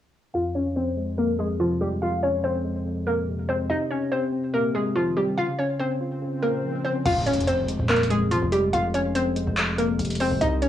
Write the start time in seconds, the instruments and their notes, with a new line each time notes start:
0.34 tine electric piano F2, synth pluck F4 F5
0.55 synth pluck C#4 C#5
0.76 tine electric piano F2, synth pluck C4 C5
0.97 tine electric piano G#3
1.18 tine electric piano F2, synth pluck A#3 A#4
1.39 tine electric piano F2, synth pluck G#3 G#4
1.60 tine electric piano C3, synth pluck F3 F4
1.81 synth pluck G3 G4, tine electric piano G#3
2.02 tine electric piano F2, synth pluck F4 F5
2.23 synth pluck C#4 C#5
2.44 tine electric piano F2, synth pluck C4 C5
2.65 tine electric piano G#3
2.86 tine electric piano F2
3.07 tine electric piano F2, synth pluck A#3 A#4
3.28 tine electric piano C3
3.49 tine electric piano G#3, synth pluck C4 C5
3.70 tine electric piano C3, synth pluck D#4 D#5, swell
3.91 synth pluck C#4 C#5
4.12 tine electric piano C3, synth pluck C4 C5
4.32 tine electric piano C4
4.53 tine electric piano C3, synth pluck A#3 A#4
4.75 tine electric piano C3, synth pluck G#3 G#4
4.96 tine electric piano D#3, synth pluck F3 F4
5.17 synth pluck G3 G4, tine electric piano C4
5.37 tine electric piano C#3, synth pluck F4 F5
5.58 synth pluck C#4 C#5
5.79 tine electric piano C#3, synth pluck C4 C5
6.01 tine electric piano F4
6.22 tine electric piano C#3
6.42 tine electric piano C#3, synth pluck A#3 A#4
6.63 tine electric piano F3
6.84 synth pluck C4 C5, tine electric piano C#4
7.05 808-style bass F1, tine electric piano F2, synth pluck F4 F5, closed hi-hat, crash, impact
7.26 synth pluck C#4 C#5, closed hi-hat
7.33 closed hi-hat
7.40 closed hi-hat
7.47 tine electric piano F2, synth pluck C4 C5, closed hi-hat
7.68 tine electric piano G#3, closed hi-hat
7.79 808-style bass D#1
7.89 tine electric piano F2, synth pluck A#3 A#4, clap, closed hi-hat
7.96 closed hi-hat
8.03 closed hi-hat
8.10 tine electric piano F2, synth pluck G#3 G#4, closed hi-hat
8.31 tine electric piano C3, synth pluck F3 F4, closed hi-hat
8.42 808-style bass F1
8.52 synth pluck G3 G4, tine electric piano G#3, closed hi-hat
8.73 808-style bass F1, tine electric piano F2, synth pluck F4 F5, closed hi-hat
8.94 synth pluck C#4 C#5, closed hi-hat
9.15 tine electric piano F2, synth pluck C4 C5, closed hi-hat
9.36 tine electric piano G#3, closed hi-hat
9.47 808-style bass F1
9.57 tine electric piano F2, clap, closed hi-hat
9.78 tine electric piano F2, synth pluck A#3 A#4, closed hi-hat
9.99 808-style bass F1, tine electric piano C3, closed hi-hat
10.05 closed hi-hat
10.10 closed hi-hat
10.15 closed hi-hat
10.20 tine electric piano G#3, synth pluck C4 C5, open hi-hat
10.31 808-style bass F1
10.41 808-style bass C2, tine electric piano C3, synth pluck D#4 D#5, closed hi-hat
10.62 synth pluck C#4 C#5, closed hi-hat